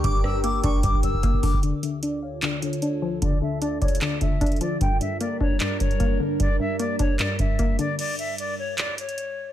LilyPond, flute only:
\new Staff \with { instrumentName = "Flute" } { \time 4/4 \key g \dorian \tempo 4 = 151 d'''8 e'''8 d'''8 cis'''8 d'''8 e'''4 d'''8 | d''8 e''8 d''8 cis''8 d''8 cis''4. | d''8 e''8 d''8 cis''8 d''8 e''4 d''8 | g''8 e''8 d''8 cis''8 d''8 cis''4. |
d''8 e''8 d''8 cis''8 d''8 e''4 d''8 | d''8 e''8 d''8 cis''8 d''8 cis''4. | }